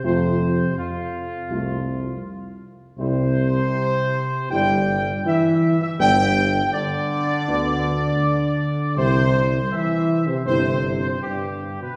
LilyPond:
<<
  \new Staff \with { instrumentName = "Trumpet section" } { \time 4/4 \key c \major \tempo 4 = 81 c''4 f'2~ f'8 r8 | c''2 g''4 e''8. e''16 | g''4 d''2. | c''4 e''8. c''16 c''4 g'8. b'16 | }
  \new Staff \with { instrumentName = "French horn section" } { \time 4/4 \key c \major <a f'>8 r4. <a f'>8 r4. | <g e'>8 r4. <g e'>8 r4. | <b d'>8 r4. <b d'>8 r4. | <c' e'>8 r4. <c' e'>8 r4. | }
  \new Staff \with { instrumentName = "Trombone section" } { \clef bass \time 4/4 \key c \major c4 f,2~ f,8 r8 | c2 g4 e8. e16 | g4 d2. | c4 e8. c16 c4 g,8. b,16 | }
  \new Staff \with { instrumentName = "Tuba" } { \clef bass \time 4/4 \key c \major f,4 r4 c,4 r4 | c,4 r4 g,,4 r4 | g,,4 r4 d,4 r4 | c,4 r4 g,,4 r4 | }
>>